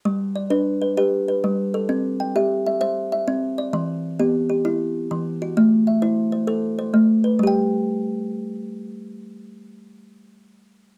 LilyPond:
\new Staff \with { instrumentName = "Kalimba" } { \time 12/8 \key g \major \tempo 4. = 131 << { r4 d''8 b'4 b'8 b'4 b'4. a'8~ | a'8 r8 g''8 e''4 e''8 e''4 e''4. d''8~ | d''8 r4 g'4 g'4. r4. fis'8~ | fis'8 r8 e''8 c''4 c''8 c''4 c''4. b'8~ |
b'8 r1 r4. | r1. | } \\ { g4 r8 d'4 r8 g'4 r8 g4 r8 | c'4 r8 g'4 r8 c''4 r8 c'4 r8 | e4 r8 b4 r8 e'4 r8 e4 r8 | a4 r8 e'4 r8 a'4 r8 a4 r8 |
<g g' g''>1.~ | <g g' g''>1. | } >> }